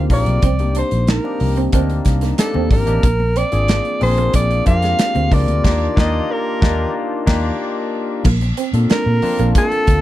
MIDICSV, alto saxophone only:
0, 0, Header, 1, 2, 480
1, 0, Start_track
1, 0, Key_signature, -2, "major"
1, 0, Tempo, 651466
1, 317, Time_signature, 4, 2, 24, 8
1, 7378, End_track
2, 0, Start_track
2, 0, Title_t, "Alto saxophone"
2, 0, Program_c, 0, 65
2, 100, Note_on_c, 0, 74, 90
2, 539, Note_off_c, 0, 74, 0
2, 575, Note_on_c, 0, 72, 80
2, 790, Note_off_c, 0, 72, 0
2, 812, Note_on_c, 0, 70, 83
2, 1256, Note_off_c, 0, 70, 0
2, 1765, Note_on_c, 0, 69, 82
2, 1985, Note_off_c, 0, 69, 0
2, 2006, Note_on_c, 0, 70, 94
2, 2486, Note_on_c, 0, 74, 104
2, 2497, Note_off_c, 0, 70, 0
2, 2963, Note_off_c, 0, 74, 0
2, 2969, Note_on_c, 0, 72, 106
2, 3188, Note_off_c, 0, 72, 0
2, 3208, Note_on_c, 0, 74, 109
2, 3427, Note_off_c, 0, 74, 0
2, 3443, Note_on_c, 0, 77, 103
2, 3933, Note_on_c, 0, 74, 98
2, 3945, Note_off_c, 0, 77, 0
2, 4406, Note_off_c, 0, 74, 0
2, 4418, Note_on_c, 0, 75, 101
2, 4660, Note_on_c, 0, 70, 88
2, 4671, Note_off_c, 0, 75, 0
2, 5130, Note_off_c, 0, 70, 0
2, 6572, Note_on_c, 0, 70, 96
2, 7016, Note_off_c, 0, 70, 0
2, 7058, Note_on_c, 0, 69, 114
2, 7378, Note_off_c, 0, 69, 0
2, 7378, End_track
0, 0, End_of_file